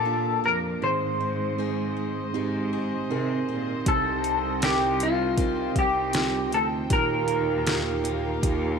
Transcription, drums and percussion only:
0, 0, Header, 1, 2, 480
1, 0, Start_track
1, 0, Tempo, 762389
1, 517, Time_signature, 4, 2, 24, 8
1, 5535, End_track
2, 0, Start_track
2, 0, Title_t, "Drums"
2, 2432, Note_on_c, 9, 42, 71
2, 2433, Note_on_c, 9, 36, 84
2, 2495, Note_off_c, 9, 42, 0
2, 2496, Note_off_c, 9, 36, 0
2, 2670, Note_on_c, 9, 42, 52
2, 2733, Note_off_c, 9, 42, 0
2, 2909, Note_on_c, 9, 42, 82
2, 2914, Note_on_c, 9, 38, 93
2, 2972, Note_off_c, 9, 42, 0
2, 2977, Note_off_c, 9, 38, 0
2, 3149, Note_on_c, 9, 42, 69
2, 3212, Note_off_c, 9, 42, 0
2, 3384, Note_on_c, 9, 36, 74
2, 3384, Note_on_c, 9, 42, 64
2, 3447, Note_off_c, 9, 36, 0
2, 3447, Note_off_c, 9, 42, 0
2, 3624, Note_on_c, 9, 36, 72
2, 3625, Note_on_c, 9, 42, 55
2, 3687, Note_off_c, 9, 36, 0
2, 3688, Note_off_c, 9, 42, 0
2, 3861, Note_on_c, 9, 42, 76
2, 3870, Note_on_c, 9, 38, 97
2, 3924, Note_off_c, 9, 42, 0
2, 3933, Note_off_c, 9, 38, 0
2, 4108, Note_on_c, 9, 42, 57
2, 4171, Note_off_c, 9, 42, 0
2, 4345, Note_on_c, 9, 42, 83
2, 4347, Note_on_c, 9, 36, 92
2, 4408, Note_off_c, 9, 42, 0
2, 4409, Note_off_c, 9, 36, 0
2, 4582, Note_on_c, 9, 42, 56
2, 4645, Note_off_c, 9, 42, 0
2, 4826, Note_on_c, 9, 42, 72
2, 4831, Note_on_c, 9, 38, 91
2, 4889, Note_off_c, 9, 42, 0
2, 4894, Note_off_c, 9, 38, 0
2, 5068, Note_on_c, 9, 42, 73
2, 5131, Note_off_c, 9, 42, 0
2, 5308, Note_on_c, 9, 36, 71
2, 5309, Note_on_c, 9, 42, 72
2, 5371, Note_off_c, 9, 36, 0
2, 5372, Note_off_c, 9, 42, 0
2, 5535, End_track
0, 0, End_of_file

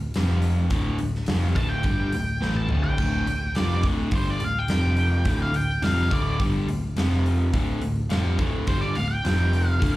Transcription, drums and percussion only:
0, 0, Header, 1, 2, 480
1, 0, Start_track
1, 0, Key_signature, -1, "minor"
1, 0, Tempo, 569260
1, 601, Time_signature, 4, 2, 24, 8
1, 8403, End_track
2, 0, Start_track
2, 0, Title_t, "Drums"
2, 119, Note_on_c, 9, 46, 84
2, 132, Note_on_c, 9, 38, 118
2, 204, Note_off_c, 9, 46, 0
2, 216, Note_off_c, 9, 38, 0
2, 353, Note_on_c, 9, 46, 61
2, 437, Note_off_c, 9, 46, 0
2, 593, Note_on_c, 9, 46, 83
2, 597, Note_on_c, 9, 36, 109
2, 678, Note_off_c, 9, 46, 0
2, 681, Note_off_c, 9, 36, 0
2, 831, Note_on_c, 9, 46, 60
2, 915, Note_off_c, 9, 46, 0
2, 970, Note_on_c, 9, 38, 30
2, 1055, Note_off_c, 9, 38, 0
2, 1066, Note_on_c, 9, 46, 80
2, 1079, Note_on_c, 9, 38, 117
2, 1151, Note_off_c, 9, 46, 0
2, 1163, Note_off_c, 9, 38, 0
2, 1314, Note_on_c, 9, 46, 61
2, 1315, Note_on_c, 9, 36, 111
2, 1398, Note_off_c, 9, 46, 0
2, 1400, Note_off_c, 9, 36, 0
2, 1545, Note_on_c, 9, 46, 72
2, 1553, Note_on_c, 9, 36, 102
2, 1629, Note_off_c, 9, 46, 0
2, 1637, Note_off_c, 9, 36, 0
2, 1792, Note_on_c, 9, 46, 60
2, 1876, Note_off_c, 9, 46, 0
2, 2040, Note_on_c, 9, 38, 68
2, 2124, Note_off_c, 9, 38, 0
2, 2150, Note_on_c, 9, 48, 65
2, 2235, Note_off_c, 9, 48, 0
2, 2265, Note_on_c, 9, 45, 94
2, 2349, Note_off_c, 9, 45, 0
2, 2394, Note_on_c, 9, 43, 81
2, 2478, Note_off_c, 9, 43, 0
2, 2513, Note_on_c, 9, 49, 89
2, 2515, Note_on_c, 9, 36, 103
2, 2598, Note_off_c, 9, 49, 0
2, 2599, Note_off_c, 9, 36, 0
2, 2759, Note_on_c, 9, 46, 58
2, 2843, Note_off_c, 9, 46, 0
2, 2993, Note_on_c, 9, 46, 77
2, 3006, Note_on_c, 9, 38, 115
2, 3077, Note_off_c, 9, 46, 0
2, 3090, Note_off_c, 9, 38, 0
2, 3230, Note_on_c, 9, 46, 58
2, 3234, Note_on_c, 9, 36, 103
2, 3315, Note_off_c, 9, 46, 0
2, 3319, Note_off_c, 9, 36, 0
2, 3468, Note_on_c, 9, 46, 79
2, 3473, Note_on_c, 9, 36, 100
2, 3553, Note_off_c, 9, 46, 0
2, 3557, Note_off_c, 9, 36, 0
2, 3711, Note_on_c, 9, 46, 56
2, 3795, Note_off_c, 9, 46, 0
2, 3949, Note_on_c, 9, 46, 86
2, 3961, Note_on_c, 9, 38, 116
2, 4033, Note_off_c, 9, 46, 0
2, 4046, Note_off_c, 9, 38, 0
2, 4188, Note_on_c, 9, 46, 59
2, 4273, Note_off_c, 9, 46, 0
2, 4428, Note_on_c, 9, 46, 79
2, 4431, Note_on_c, 9, 36, 105
2, 4512, Note_off_c, 9, 46, 0
2, 4516, Note_off_c, 9, 36, 0
2, 4672, Note_on_c, 9, 46, 63
2, 4756, Note_off_c, 9, 46, 0
2, 4912, Note_on_c, 9, 46, 88
2, 4925, Note_on_c, 9, 38, 114
2, 4997, Note_off_c, 9, 46, 0
2, 5009, Note_off_c, 9, 38, 0
2, 5154, Note_on_c, 9, 36, 110
2, 5157, Note_on_c, 9, 46, 64
2, 5239, Note_off_c, 9, 36, 0
2, 5241, Note_off_c, 9, 46, 0
2, 5394, Note_on_c, 9, 36, 98
2, 5395, Note_on_c, 9, 46, 74
2, 5479, Note_off_c, 9, 36, 0
2, 5480, Note_off_c, 9, 46, 0
2, 5637, Note_on_c, 9, 46, 62
2, 5721, Note_off_c, 9, 46, 0
2, 5874, Note_on_c, 9, 46, 83
2, 5887, Note_on_c, 9, 38, 118
2, 5958, Note_off_c, 9, 46, 0
2, 5971, Note_off_c, 9, 38, 0
2, 6012, Note_on_c, 9, 38, 33
2, 6096, Note_off_c, 9, 38, 0
2, 6121, Note_on_c, 9, 46, 57
2, 6205, Note_off_c, 9, 46, 0
2, 6354, Note_on_c, 9, 36, 108
2, 6354, Note_on_c, 9, 46, 74
2, 6438, Note_off_c, 9, 46, 0
2, 6439, Note_off_c, 9, 36, 0
2, 6589, Note_on_c, 9, 46, 57
2, 6674, Note_off_c, 9, 46, 0
2, 6831, Note_on_c, 9, 46, 74
2, 6843, Note_on_c, 9, 38, 113
2, 6915, Note_off_c, 9, 46, 0
2, 6928, Note_off_c, 9, 38, 0
2, 7072, Note_on_c, 9, 46, 56
2, 7074, Note_on_c, 9, 36, 111
2, 7156, Note_off_c, 9, 46, 0
2, 7158, Note_off_c, 9, 36, 0
2, 7311, Note_on_c, 9, 46, 73
2, 7315, Note_on_c, 9, 36, 102
2, 7395, Note_off_c, 9, 46, 0
2, 7400, Note_off_c, 9, 36, 0
2, 7550, Note_on_c, 9, 46, 57
2, 7634, Note_off_c, 9, 46, 0
2, 7798, Note_on_c, 9, 46, 78
2, 7811, Note_on_c, 9, 38, 118
2, 7883, Note_off_c, 9, 46, 0
2, 7895, Note_off_c, 9, 38, 0
2, 8038, Note_on_c, 9, 46, 60
2, 8122, Note_off_c, 9, 46, 0
2, 8280, Note_on_c, 9, 46, 82
2, 8281, Note_on_c, 9, 36, 97
2, 8364, Note_off_c, 9, 46, 0
2, 8365, Note_off_c, 9, 36, 0
2, 8403, End_track
0, 0, End_of_file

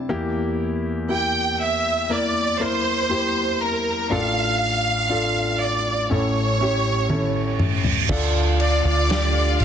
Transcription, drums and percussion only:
0, 0, Header, 1, 2, 480
1, 0, Start_track
1, 0, Key_signature, -1, "minor"
1, 0, Tempo, 1000000
1, 48, Time_signature, 4, 2, 24, 8
1, 4631, End_track
2, 0, Start_track
2, 0, Title_t, "Drums"
2, 3406, Note_on_c, 9, 48, 43
2, 3454, Note_off_c, 9, 48, 0
2, 3645, Note_on_c, 9, 45, 63
2, 3693, Note_off_c, 9, 45, 0
2, 3764, Note_on_c, 9, 43, 60
2, 3812, Note_off_c, 9, 43, 0
2, 3885, Note_on_c, 9, 36, 104
2, 3885, Note_on_c, 9, 49, 97
2, 3933, Note_off_c, 9, 36, 0
2, 3933, Note_off_c, 9, 49, 0
2, 4127, Note_on_c, 9, 51, 60
2, 4175, Note_off_c, 9, 51, 0
2, 4367, Note_on_c, 9, 51, 63
2, 4373, Note_on_c, 9, 38, 99
2, 4415, Note_off_c, 9, 51, 0
2, 4421, Note_off_c, 9, 38, 0
2, 4608, Note_on_c, 9, 51, 49
2, 4631, Note_off_c, 9, 51, 0
2, 4631, End_track
0, 0, End_of_file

